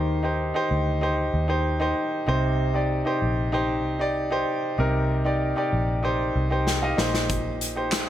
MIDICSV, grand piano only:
0, 0, Header, 1, 2, 480
1, 0, Start_track
1, 0, Tempo, 626959
1, 1743, Time_signature, 4, 2, 24, 8
1, 6194, End_track
2, 0, Start_track
2, 0, Title_t, "Grand piano"
2, 0, Program_c, 0, 0
2, 0, Control_c, 0, 64, 127
2, 0, Note_on_c, 0, 51, 58
2, 0, Note_on_c, 0, 63, 67
2, 0, Note_on_c, 0, 67, 66
2, 0, Note_on_c, 0, 72, 76
2, 0, Note_on_c, 0, 75, 78
2, 140, Note_off_c, 0, 63, 0
2, 143, Note_off_c, 0, 67, 0
2, 147, Note_off_c, 0, 72, 0
2, 174, Note_on_c, 0, 63, 67
2, 182, Note_on_c, 0, 67, 60
2, 188, Note_on_c, 0, 72, 70
2, 392, Note_off_c, 0, 63, 0
2, 396, Note_off_c, 0, 67, 0
2, 399, Note_off_c, 0, 72, 0
2, 415, Note_on_c, 0, 63, 73
2, 422, Note_on_c, 0, 67, 62
2, 429, Note_on_c, 0, 72, 83
2, 513, Note_off_c, 0, 51, 0
2, 739, Note_off_c, 0, 63, 0
2, 743, Note_off_c, 0, 67, 0
2, 746, Note_off_c, 0, 72, 0
2, 775, Note_on_c, 0, 63, 75
2, 783, Note_on_c, 0, 67, 66
2, 789, Note_on_c, 0, 72, 82
2, 1099, Note_off_c, 0, 63, 0
2, 1103, Note_off_c, 0, 67, 0
2, 1106, Note_off_c, 0, 72, 0
2, 1133, Note_on_c, 0, 63, 72
2, 1139, Note_on_c, 0, 67, 61
2, 1146, Note_on_c, 0, 72, 78
2, 1351, Note_off_c, 0, 63, 0
2, 1355, Note_off_c, 0, 67, 0
2, 1358, Note_off_c, 0, 72, 0
2, 1375, Note_on_c, 0, 63, 72
2, 1382, Note_on_c, 0, 67, 69
2, 1389, Note_on_c, 0, 72, 79
2, 1700, Note_off_c, 0, 63, 0
2, 1703, Note_off_c, 0, 67, 0
2, 1707, Note_off_c, 0, 72, 0
2, 1735, Note_on_c, 0, 63, 72
2, 1742, Note_on_c, 0, 48, 66
2, 1742, Note_on_c, 0, 67, 64
2, 1749, Note_on_c, 0, 72, 84
2, 1752, Control_c, 0, 64, 0
2, 1759, Note_off_c, 0, 75, 0
2, 1884, Control_c, 0, 64, 127
2, 2059, Note_off_c, 0, 63, 0
2, 2063, Note_off_c, 0, 67, 0
2, 2067, Note_off_c, 0, 72, 0
2, 2094, Note_on_c, 0, 63, 63
2, 2101, Note_on_c, 0, 67, 64
2, 2109, Note_on_c, 0, 74, 70
2, 2312, Note_off_c, 0, 63, 0
2, 2316, Note_off_c, 0, 67, 0
2, 2319, Note_off_c, 0, 74, 0
2, 2335, Note_on_c, 0, 63, 66
2, 2343, Note_on_c, 0, 67, 67
2, 2349, Note_on_c, 0, 72, 80
2, 2432, Note_off_c, 0, 48, 0
2, 2659, Note_off_c, 0, 63, 0
2, 2664, Note_off_c, 0, 67, 0
2, 2666, Note_off_c, 0, 72, 0
2, 2697, Note_on_c, 0, 63, 82
2, 2703, Note_on_c, 0, 67, 74
2, 2710, Note_on_c, 0, 72, 86
2, 3020, Note_off_c, 0, 63, 0
2, 3023, Note_off_c, 0, 67, 0
2, 3027, Note_off_c, 0, 72, 0
2, 3056, Note_on_c, 0, 63, 69
2, 3063, Note_on_c, 0, 67, 66
2, 3071, Note_on_c, 0, 74, 81
2, 3273, Note_off_c, 0, 63, 0
2, 3277, Note_off_c, 0, 67, 0
2, 3281, Note_off_c, 0, 74, 0
2, 3296, Note_on_c, 0, 63, 72
2, 3304, Note_on_c, 0, 67, 68
2, 3308, Note_on_c, 0, 72, 82
2, 3620, Note_off_c, 0, 63, 0
2, 3624, Note_off_c, 0, 67, 0
2, 3626, Note_off_c, 0, 72, 0
2, 3658, Note_on_c, 0, 63, 71
2, 3665, Note_on_c, 0, 48, 64
2, 3665, Note_on_c, 0, 67, 61
2, 3672, Note_on_c, 0, 70, 80
2, 3981, Note_off_c, 0, 63, 0
2, 3984, Note_off_c, 0, 67, 0
2, 3988, Note_off_c, 0, 70, 0
2, 4016, Note_on_c, 0, 63, 64
2, 4023, Note_on_c, 0, 67, 63
2, 4028, Note_on_c, 0, 74, 69
2, 4234, Note_off_c, 0, 63, 0
2, 4237, Note_off_c, 0, 67, 0
2, 4240, Note_off_c, 0, 74, 0
2, 4256, Note_on_c, 0, 63, 69
2, 4263, Note_on_c, 0, 67, 67
2, 4270, Note_on_c, 0, 74, 76
2, 4354, Note_off_c, 0, 48, 0
2, 4581, Note_off_c, 0, 63, 0
2, 4584, Note_off_c, 0, 67, 0
2, 4587, Note_off_c, 0, 74, 0
2, 4614, Note_on_c, 0, 63, 72
2, 4622, Note_on_c, 0, 67, 70
2, 4629, Note_on_c, 0, 72, 80
2, 4940, Note_off_c, 0, 63, 0
2, 4943, Note_off_c, 0, 67, 0
2, 4947, Note_off_c, 0, 72, 0
2, 4977, Note_on_c, 0, 63, 63
2, 4983, Note_on_c, 0, 67, 65
2, 4993, Note_on_c, 0, 72, 73
2, 5106, Note_on_c, 0, 79, 60
2, 5194, Note_off_c, 0, 63, 0
2, 5197, Note_off_c, 0, 67, 0
2, 5202, Note_off_c, 0, 72, 0
2, 5217, Note_off_c, 0, 79, 0
2, 5219, Note_on_c, 0, 63, 72
2, 5226, Note_on_c, 0, 67, 64
2, 5227, Note_on_c, 0, 77, 58
2, 5233, Note_on_c, 0, 75, 81
2, 5325, Note_off_c, 0, 63, 0
2, 5332, Note_off_c, 0, 75, 0
2, 5333, Note_off_c, 0, 67, 0
2, 5337, Note_on_c, 0, 63, 76
2, 5338, Note_off_c, 0, 77, 0
2, 5344, Note_on_c, 0, 67, 68
2, 5344, Note_on_c, 0, 75, 61
2, 5345, Note_on_c, 0, 46, 59
2, 5351, Note_on_c, 0, 72, 79
2, 5353, Control_c, 0, 64, 0
2, 5498, Control_c, 0, 64, 127
2, 5568, Note_off_c, 0, 75, 0
2, 5875, Note_off_c, 0, 63, 0
2, 5879, Note_off_c, 0, 67, 0
2, 5882, Note_off_c, 0, 72, 0
2, 5937, Note_on_c, 0, 63, 65
2, 5944, Note_on_c, 0, 67, 59
2, 5951, Note_on_c, 0, 72, 72
2, 6035, Note_off_c, 0, 46, 0
2, 6155, Note_off_c, 0, 63, 0
2, 6158, Note_off_c, 0, 67, 0
2, 6161, Note_off_c, 0, 72, 0
2, 6194, End_track
0, 0, End_of_file